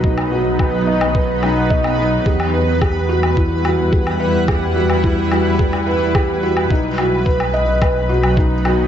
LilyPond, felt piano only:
\new Staff \with { instrumentName = "Felt piano" } { \time 4/4 \key e \minor \tempo 4 = 108 dis'8 fis'8 b'8 dis''8 b'8 dis'8 dis''8 dis'8 | g'8 b'8 g'8 fis'8 e'8 fis'8 g'8 b'8 | g'8 fis'8 e'8 fis'8 g'8 b'8 g'8 fis'8 | dis'8 fis'8 b'8 dis''8 b'8 fis'8 dis'8 fis'8 | }